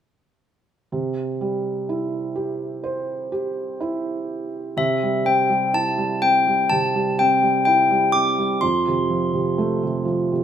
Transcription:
0.92 felt piano C3
1.41 felt piano G3
1.89 felt piano E4
2.36 felt piano G4
2.84 felt piano C5
3.32 felt piano G4
3.80 felt piano E4
4.77 felt piano C3, handbells E5
5.03 felt piano G3
5.25 felt piano C4, handbells G5
5.50 felt piano G3
5.73 felt piano E4, handbells A5
5.98 felt piano G3
6.22 felt piano C4, handbells G5
6.47 felt piano G3
6.70 felt piano C3, handbells A5
6.95 felt piano G3
7.19 felt piano C4, handbells G5
7.42 felt piano G3
7.65 felt piano E4, handbells G5
7.91 felt piano G3
8.12 felt piano C4, handbells D6
8.38 felt piano G3
8.61 felt piano F2, handbells C6
8.88 felt piano C3
9.10 felt piano F3
9.33 felt piano C3
9.58 felt piano A3
9.83 felt piano C3
10.05 felt piano F3
10.32 felt piano C3

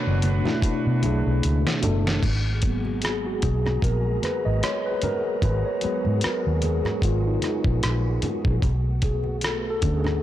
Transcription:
Already playing: tine electric piano B2 A3 D4 C#5, string machine A3 B3 D4, horn section D4 F#4 B4, soft synth lead C#5
0.07 fingered electric bass F#1
0.22 closed hi-hat, muted conga, high conga
0.43 tine electric piano B2 A3 D4, snare, low conga
0.47 tine electric piano E4
0.62 kick, closed hi-hat
0.87 fingered electric bass B2
1.01 fingered electric bass B1, tine electric piano B2 A3 D4 G#4, closed hi-hat, muted conga, high conga
1.26 fingered electric bass B1
1.43 fingered electric bass C#2, closed hi-hat
1.67 snare
1.81 tine electric piano B2 A3 D4 A4, closed hi-hat, high conga, low conga
1.85 fingered electric bass F#1
2.07 snare
2.23 fingered electric bass G#1, string machine G#3 F#4 G#4 A#5, kick, closed hi-hat, crash, low conga
2.62 tine electric piano F#3 A#3 B3, kick, closed hi-hat, muted conga
2.85 high conga
3.02 tine electric piano G#4, cross-stick, closed hi-hat
3.26 tine electric piano F#4
3.42 fingered electric bass B1, tine electric piano G#4, kick, closed hi-hat, muted conga, high conga
3.66 cross-stick, low conga
3.82 fingered electric bass A#1, tine electric piano A#4, kick, closed hi-hat
4.23 tine electric piano B4, cross-stick, closed hi-hat, muted conga, high conga
4.45 fingered electric bass G#1, tine electric piano D#5
4.63 tine electric piano C#5, cross-stick, closed hi-hat, muted conga
4.86 tine electric piano B4
5.02 tine electric piano A#4, closed hi-hat, muted conga, high conga, low conga
5.42 fingered electric bass G#1, tine electric piano B4, kick, closed hi-hat, muted conga, low conga
5.66 tine electric piano C#5
5.81 tine electric piano F#3 G#3 B3 B4, muted fingered electric bass stroke, closed hi-hat, muted conga
6.05 fingered electric bass G#2, high conga
6.21 tine electric piano A#4, muted fingered electric bass stroke, cross-stick, closed hi-hat
6.47 fingered electric bass D#2
6.62 tine electric piano G#4, closed hi-hat, muted conga, high conga
6.85 cross-stick, low conga
7.02 fingered electric bass G#1, tine electric piano F4, kick, closed hi-hat, muted conga
7.27 tine electric piano D#4
7.42 tine electric piano D#4, cross-stick, closed hi-hat, high conga
7.64 fingered electric bass A#1, kick
7.83 fingered electric bass A#1, cross-stick, closed hi-hat
8.22 closed hi-hat, high conga, low conga
8.45 fingered electric bass A#1, kick
8.62 fingered electric bass B1, string machine A3 B3 F#4, kick, closed hi-hat, low conga
9.02 tine electric piano G#4, kick, closed hi-hat
9.23 high conga
9.41 tine electric piano A4, cross-stick, closed hi-hat, muted conga
9.70 tine electric piano A4
9.82 fingered electric bass D2, tine electric piano A3 C#4 D4, kick, closed hi-hat, high conga
9.97 tine electric piano G#4
10.04 cross-stick, low conga

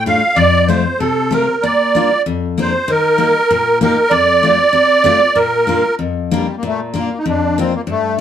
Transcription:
Already playing: steel-string acoustic guitar A2
0.06 steel-string acoustic guitar A3 D4 F4, accordion F5
0.36 steel-string acoustic guitar F2, accordion D5
0.67 steel-string acoustic guitar A3 C4 F4, accordion C5
1.00 steel-string acoustic guitar C3, accordion A4
1.31 steel-string acoustic guitar A3 C4 F4, accordion A#4
1.63 steel-string acoustic guitar A#2, accordion D5
1.95 steel-string acoustic guitar A#3 D4 F4
2.26 steel-string acoustic guitar F2
2.58 steel-string acoustic guitar A#3 D4 F4, accordion C5
2.88 steel-string acoustic guitar D#3, accordion A#4
3.18 steel-string acoustic guitar A#3 D#4 G4
3.51 steel-string acoustic guitar A#2
3.81 steel-string acoustic guitar A#3 D#4 G4, accordion A#4
4.10 steel-string acoustic guitar F2, accordion D5
4.43 steel-string acoustic guitar A3 C4 F4
4.73 steel-string acoustic guitar C3
5.04 steel-string acoustic guitar A3 C4 F4
5.35 steel-string acoustic guitar A#2, accordion A#4
5.67 steel-string acoustic guitar A#3 D4 F4
5.99 steel-string acoustic guitar F2
6.31 accordion G3, steel-string acoustic guitar A#3 D4 F4
6.57 accordion A#3
6.63 steel-string acoustic guitar A#2
6.67 accordion A3
6.94 steel-string acoustic guitar A#3 D4 F4
6.98 accordion A#3
7.18 accordion D#4
7.26 steel-string acoustic guitar F2, accordion D4
7.58 steel-string acoustic guitar A#3 D4 F4, accordion C4
7.75 accordion A#3
7.87 steel-string acoustic guitar G2, accordion A3

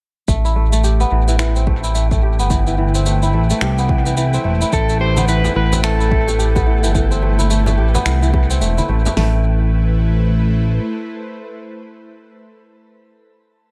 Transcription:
0.28 analog synth bass A1, kora A3, synth drone A3 E4 B4, synth texture G5, kick, shaker
0.45 kora E4, shaker
0.56 kora A3
0.72 kora A3, shaker
0.84 kora G4, shaker
1.00 kora B3, shaker
1.11 analog synth bass A1, kora E3
1.28 kora E3, shaker
1.39 kora E3, finger snap, shaker
1.56 kora C4, shaker
1.67 kora A3, kick
1.84 kora E4, shaker
1.95 kora A3, shaker
2.11 kora A3, kick, shaker
2.23 kora G4
2.39 analog synth bass G1, kora B3, shaker
2.50 kora E3, kick, shaker
2.67 kora E3, shaker
2.78 kora E3
2.95 kora C4, shaker
3.06 kora A3, shaker
3.23 kora E4, shaker
3.33 analog synth bass A1, kora A3
3.50 kora A3, shaker
3.61 analog synth bass C2, kora G4, finger snap, shaker
3.78 kora B3, shaker
3.89 kora E3, kick
4.06 kora E3, shaker
4.17 kora E3, shaker
4.34 kora C4, shaker
4.45 analog synth bass E1, kora A3
4.61 kora E4, shaker
4.73 analog synth bass A1, kora A3, electric slide guitar A4, kick, shaker
4.89 kora A3, shaker
5.00 kora G4, electric slide guitar C5
5.16 kora B3, high conga, shaker
5.28 kora E3, electric slide guitar B4, shaker
5.44 kora E3, low conga, shaker
5.56 analog synth bass A1, kora E3, electric slide guitar B4
5.72 kora C4, low conga, shaker
5.83 kora A3, electric slide guitar A4, finger snap, shaker
6.00 kora E4, shaker
6.11 kora A3, kick
6.27 kora A3, high bongo, shaker
6.38 kora G4, shaker
6.55 kora B3, kick, high bongo, shaker
6.66 kora E3
6.83 analog synth bass G1, kora E3, high conga, shaker
6.94 kora E3, kick, shaker
7.11 kora C4, shaker
7.22 kora A3, high bongo
7.39 kora E4, high bongo, high conga, shaker
7.50 kora A3, shaker
7.66 kora A3, low conga, shaker
7.78 analog synth bass A1, kora G4
7.95 kora B3, low conga, shaker
8.06 analog synth bass C2, kora E3, finger snap, shaker
8.22 kora E3, high conga, shaker
8.34 kora E3, kick, high bongo
8.50 kora C4, high conga, shaker
8.61 analog synth bass E1, kora A3, shaker
8.78 kora E4, high conga, shaker
8.89 analog synth bass A1, kora A3
9.06 kora A3, high bongo, low conga, shaker
9.17 analog synth bass A1, kora A3, synth drone A3 E4 B4 C5, snare, open hi-hat

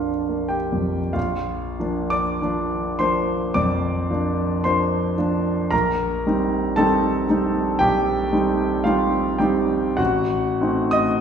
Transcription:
Already playing: grand piano A#1 F2 F3 A#3 D4 F4 F5, french horn D4
0.28 grand piano A#3
0.49 grand piano G4 G5
0.72 grand piano F2
1.13 grand piano A#1 F4 F5
1.80 grand piano F3 A#3 D4
2.10 grand piano D5 D6
2.42 grand piano F3 A#3 D4
2.99 grand piano F3 A#3 D4 C5 C6
3.54 grand piano F2 D5 D6
4.10 grand piano F3 A#3 D4
4.64 grand piano F3 A#3 D4 C5 C6
5.18 grand piano F3 A#3 D4
5.71 grand piano A#1 A#4 A#5
6.27 grand piano G3 C4 D#4
6.76 grand piano G3 C4 D#4 A4 A5
7.29 grand piano G3 C4 D#4
7.79 grand piano A#1 G4 G5
8.33 grand piano G3 C4 D#4
8.84 grand piano G3 C4 D#4 F4 F5
9.38 grand piano G3 C4 D#4 G4 G5
9.97 grand piano A1 F#4 F#5
10.61 grand piano A3 C4 D#4
10.91 grand piano D#5 D#6

